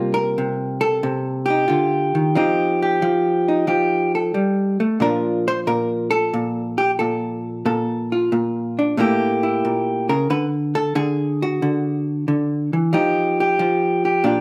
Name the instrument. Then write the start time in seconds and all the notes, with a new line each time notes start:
hollow-body jazz guitar
Already playing: C3 G3 A#3 F4
0.14 A#4
0.38 C3
0.81 A4
1.03 C3
1.46 G4
1.50 D#4
1.68 D3 F4
2.15 D#3
2.35 F3 C4 D#4 G4
2.82 G4
3.02 F3
3.48 D#4
3.67 F3 G4
4.15 A4
4.34 G3
4.80 A3
5.00 A#2 F3 D4 F4 A#4
5.48 C5
5.67 A#2 A#4
6.11 A4
6.33 A#2
6.78 G4
6.99 A#2 A4
7.66 A#2 A4
8.12 F4
8.32 A#2
8.79 D4
8.97 A2 A3 A#3 E4 G4
9.43 E4
9.65 A#2
10.09 C#3 A#4
10.30 D3 B4
10.75 A4
10.95 D3 G#4
11.42 F#4
11.62 D3
12.28 D3
12.73 E3
12.93 F3 D#4 G4
13.40 G4
13.59 F3
14.05 G4
14.24 A#2 D4 F4 G4